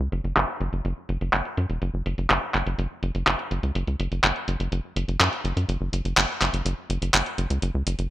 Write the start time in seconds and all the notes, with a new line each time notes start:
0.00 C#2
0.12 F#1, closed hi-hat
0.24 F#1, closed hi-hat
0.36 F#1, clap, closed hi-hat
0.60 F#1, closed hi-hat
0.73 F#1, closed hi-hat
0.85 F#1, closed hi-hat
1.09 F#1, closed hi-hat
1.21 F#1, closed hi-hat
1.33 F#1, clap, closed hi-hat
1.45 closed hi-hat
1.57 F#2, closed hi-hat
1.70 E1, closed hi-hat
1.82 F#1, closed hi-hat
1.94 F#1
2.06 F#1, closed hi-hat
2.18 F#1, closed hi-hat
2.30 F#1, clap, closed hi-hat
2.54 F#1, clap, closed hi-hat
2.66 F#1, closed hi-hat
2.78 F#1, closed hi-hat
3.03 F#1, closed hi-hat
3.15 F#1, closed hi-hat
3.27 F#1, clap, closed hi-hat
3.39 closed hi-hat
3.51 F#1, closed hi-hat
3.63 C#2, closed hi-hat
3.75 F#1, closed hi-hat
3.87 C#2, closed hi-hat
4.00 F#1, closed hi-hat
4.12 F#1, closed hi-hat
4.24 F#1, clap, closed hi-hat
4.36 closed hi-hat
4.48 F#1, closed hi-hat
4.60 F#1, closed hi-hat
4.72 F#1, closed hi-hat
4.96 F#1, closed hi-hat
5.08 F#1, closed hi-hat
5.20 F#2, clap, closed hi-hat
5.33 closed hi-hat
5.44 F#1, closed hi-hat
5.57 F#2, closed hi-hat
5.69 F#1, closed hi-hat
5.81 F#1
5.93 F#1, closed hi-hat
6.05 F#1, closed hi-hat
6.17 F#1, clap, closed hi-hat
6.41 F#1, clap, closed hi-hat
6.53 F#1, closed hi-hat
6.65 F#1, closed hi-hat
6.90 F#1, closed hi-hat
7.02 F#1, closed hi-hat
7.14 F#1, clap, closed hi-hat
7.26 closed hi-hat
7.38 F#1, closed hi-hat
7.50 C#2, closed hi-hat
7.62 F#1, closed hi-hat
7.75 C#2
7.87 F#1, closed hi-hat
7.99 F#1, closed hi-hat